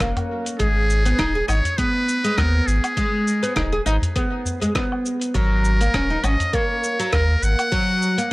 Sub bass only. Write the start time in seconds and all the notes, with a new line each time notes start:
0.00 F#1
0.60 G#1
1.19 D#1
1.49 G#1
2.38 D#2
2.68 G#1
3.57 D#1
3.86 G#1
5.35 G#1
5.94 D#1
6.24 G#1
7.13 D#2
7.43 G#1